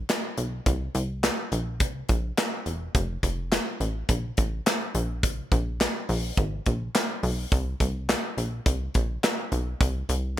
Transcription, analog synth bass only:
0.38 0.61 B1 medium
0.66 0.89 C2 loud
0.95 1.30 C2 loud
1.52 1.82 A#1 loud
1.80 2.04 C2 medium
2.09 2.32 A#1 loud
2.66 2.89 E1 medium
2.95 3.18 F1 loud
3.23 3.59 F1 loud
3.80 4.04 A1 medium
4.09 4.32 A#1 medium
4.38 4.61 A1 medium
4.95 5.41 A#1 medium
5.52 5.87 A#1 loud
6.09 6.32 A#1 loud
6.37 6.61 G#1 medium
6.66 6.90 A#1 medium
7.23 7.46 B1 medium
7.52 7.75 C2 loud
7.80 8.16 C2 loud
8.37 8.61 A#1 medium
8.66 8.89 C2 loud
8.95 9.18 A#1 medium
9.52 9.75 B1 loud
9.81 10.04 C2 loud
10.09 10.39 C2 loud

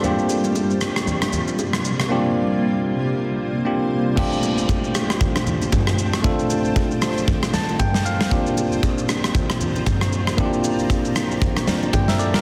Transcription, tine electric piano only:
0.00 2.06 A#3 medium
0.00 2.07 C4 medium
0.00 0.18 A4 medium
0.00 0.18 D5 medium
0.04 2.07 D4 medium
0.04 2.07 F4 medium
0.04 2.08 G4 medium
2.09 3.62 A#3 medium
2.09 3.62 C4 medium
2.09 3.63 D4 medium
2.09 3.63 F4 medium
2.09 3.63 G4 medium
3.65 4.17 A#3 medium
3.65 4.16 C4 medium
3.65 4.16 D4 medium
3.65 4.17 F4 medium
3.65 4.18 G4 medium
4.16 6.20 A3 medium
4.16 6.20 C4 medium
4.16 6.20 D4 medium
4.16 6.21 F4 medium
4.16 6.21 G4 medium
6.23 8.27 A3 medium
6.23 8.27 C4 medium
6.23 8.27 D4 medium
6.23 8.28 F4 medium
6.23 8.28 A4 medium
7.54 7.78 A5 medium
7.80 8.04 G5 medium
8.05 8.29 F5 medium
8.30 10.33 A#3 medium
8.30 10.34 C4 medium
8.30 10.34 D4 medium
8.30 10.35 F4 medium
8.30 10.35 G4 medium
10.37 11.64 A#3 medium
10.37 11.65 C4 medium
10.37 11.65 D4 medium
10.37 10.46 E4 medium
10.37 11.66 G4 medium
10.45 11.66 F4 medium
11.67 12.41 A#3 medium
11.67 12.41 C4 soft
11.67 12.41 D4 soft
11.67 11.94 F4 soft
11.67 11.94 A#4 medium
11.93 12.08 D5 medium
11.93 12.08 G5 medium
12.08 12.19 A#4 medium
12.08 12.19 E5 medium
12.19 12.34 A4 medium
12.19 12.34 D5 medium
12.34 12.41 F4 medium
12.34 12.41 A#4 medium

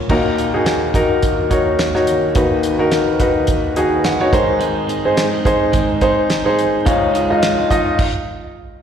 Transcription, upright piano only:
0.00 0.10 A#2 soft
0.00 0.11 F3 soft
0.00 0.12 C#4 medium
0.10 2.31 D#2 medium
0.10 2.32 A#2 medium
0.10 0.40 D#4 medium
0.10 0.40 F#4 medium
0.10 0.40 A#4 medium
0.54 0.83 D#4 medium
0.54 0.83 F#4 medium
0.54 0.83 G#4 medium
0.94 1.35 D#4 medium
0.94 1.35 F#4 medium
0.94 1.36 A#4 medium
1.50 1.80 D#4 medium
1.50 1.80 F#4 medium
1.50 1.81 C#5 medium
1.95 2.24 D#4 medium
1.95 2.24 F#4 medium
1.95 2.24 C#5 medium
2.35 4.29 D#2 medium
2.35 4.29 D#3 medium
2.35 2.65 D#4 medium
2.35 2.65 F#4 medium
2.35 2.65 B4 medium
2.79 3.09 D#4 medium
2.79 3.09 F#4 medium
2.79 3.09 A#4 medium
3.20 3.61 D#4 medium
3.20 3.61 F#4 medium
3.20 3.61 B4 medium
3.77 4.06 D#4 medium
3.77 4.06 F#4 medium
3.77 4.06 G#4 medium
3.77 4.03 D#5 medium
4.05 4.31 F#5 medium
4.20 4.31 D#4 medium
4.20 4.33 F#4 medium
4.20 4.33 C#5 medium
4.33 6.54 G#2 medium
4.33 6.54 D#3 medium
4.33 4.89 D#4 medium
4.33 4.89 G#4 medium
4.33 4.89 C5 medium
4.33 4.59 A#5 medium
5.05 5.35 D#4 medium
5.05 5.35 G#4 medium
5.05 5.35 C5 medium
5.45 5.86 D#4 medium
5.45 5.86 G#4 medium
5.45 5.86 C5 medium
6.01 6.31 D#4 medium
6.01 6.32 G#4 medium
6.01 6.32 C5 medium
6.45 6.75 D#4 medium
6.45 6.75 G#4 medium
6.45 6.75 C5 medium
6.86 7.95 C#2 medium
6.86 7.95 G#2 medium
6.86 7.16 D#4 medium
6.86 7.16 F4 medium
6.86 7.16 C#5 medium
7.30 7.60 D#4 medium
7.30 7.60 F4 medium
7.30 7.60 D#5 medium
7.70 7.99 D#4 medium
7.70 7.99 F4 medium
7.70 7.99 D#5 medium

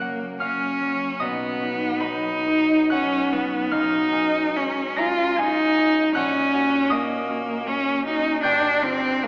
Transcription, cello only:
0.00 0.37 A#3 medium
0.41 1.23 C#4 medium
1.21 2.02 B3 medium
2.01 2.91 D#4 medium
2.92 3.34 C#4 medium
3.33 3.74 B3 medium
3.72 4.58 D#4 medium
4.56 5.01 C#4 medium
4.99 5.40 F4 medium
5.39 6.14 D#4 loud
6.15 6.94 C#4 medium
6.92 7.69 A#3 medium
7.67 8.05 C#4 medium
8.06 8.42 D#4 medium
8.43 8.84 D4 medium
8.82 9.24 C4 loud
9.23 9.27 A#3 medium

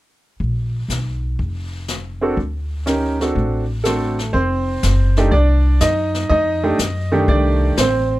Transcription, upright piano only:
2.21 2.35 C4 soft
2.21 2.36 D4 soft
2.21 2.36 F#4 soft
2.21 2.36 A4 medium
2.86 3.16 C#4 soft
2.86 3.17 D#4 soft
2.86 3.17 G4 soft
2.86 3.17 A#4 medium
3.20 3.63 C4 soft
3.20 3.63 D4 soft
3.20 3.63 F#4 soft
3.20 3.63 A4 soft
3.84 4.31 A3 soft
3.84 4.15 C4 soft
3.84 4.15 D4 soft
3.84 4.16 F#4 soft
3.84 4.35 A4 medium
3.84 4.16 C5 soft
4.33 5.28 C4 medium
4.33 5.28 C5 medium
5.17 5.31 A3 medium
5.17 5.31 D4 soft
5.17 5.31 D#4 medium
5.17 5.32 G4 medium
5.31 5.78 D4 medium
5.31 5.82 D5 medium
5.81 6.27 D#4 medium
5.81 6.28 D#5 medium
6.29 6.62 D#4 medium
6.29 7.24 D#5 medium
6.63 6.78 A3 medium
6.63 6.78 D4 medium
6.63 6.78 D#4 medium
6.63 6.78 G4 medium
7.12 7.74 D#3 medium
7.12 7.74 A3 medium
7.12 7.28 D4 medium
7.12 7.74 G4 medium
7.29 7.75 D4 medium
7.29 7.79 D5 medium
7.78 8.20 C4 medium
7.78 8.20 C5 medium

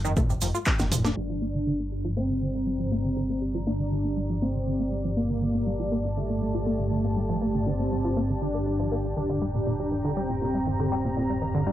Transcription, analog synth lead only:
1.17 2.07 D4 loud
2.17 3.57 C4 loud
3.67 4.32 D4 loud
4.42 5.07 C4 loud
5.17 6.07 A#3 loud
6.17 7.68 A3 loud
7.67 8.32 C4 loud
8.42 9.07 D4 loud
9.17 10.18 D4 loud
10.17 11.57 C4 loud
11.67 11.72 D4 loud

